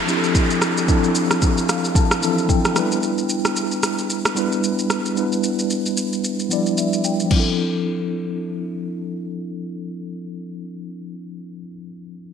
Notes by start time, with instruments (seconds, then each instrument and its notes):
Already playing: tine electric piano F3 C4 D4 E4 A4, downlifter
0.07 tine electric piano F3 C4 D4 E4 G4, shaker
0.17 tine electric piano A4
0.24 shaker
0.35 kick, shaker
0.50 shaker
0.62 cross-stick, shaker
0.77 shaker
0.87 tine electric piano F3 C4 D4 E4 A4, kick, shaker
1.04 shaker
1.15 shaker
1.31 cross-stick, shaker
1.42 kick, shaker
1.58 shaker
1.69 tine electric piano F5, cross-stick, shaker
1.84 shaker
1.95 tine electric piano A5, kick, shaker
2.11 cross-stick, shaker
2.21 tine electric piano E3 C4 D4 E4 A4, shaker
2.27 tine electric piano F3
2.38 shaker
2.49 tine electric piano G5, kick, shaker
2.65 cross-stick, shaker
2.74 tine electric piano G3 B3 D4 E4, cross-stick, shaker
2.78 tine electric piano B4
2.92 shaker
3.03 shaker
3.18 shaker
3.29 shaker
3.45 cross-stick, shaker
3.56 shaker
3.71 shaker
3.83 cross-stick, shaker
3.98 shaker
4.10 shaker
4.25 cross-stick, shaker
4.35 tine electric piano G3 B3 D4 E4 B4, shaker
4.52 shaker
4.63 shaker
4.79 shaker
4.90 cross-stick, shaker
5.06 shaker
5.15 tine electric piano G3 B3 D4 E4, shaker
5.19 tine electric piano B4
5.32 shaker
5.43 shaker
5.59 shaker
5.70 shaker
5.86 shaker
5.97 shaker
6.13 shaker
6.24 shaker
6.40 shaker
6.49 tine electric piano F3 B3 D4 E4 D5, shaker
6.55 tine electric piano G3
6.66 shaker
6.78 tine electric piano E5, shaker
6.93 shaker
7.04 tine electric piano G5, shaker
7.20 shaker
7.24 tine electric piano F3 C4
7.31 tine electric piano D4, kick, crash
7.36 tine electric piano E4 A4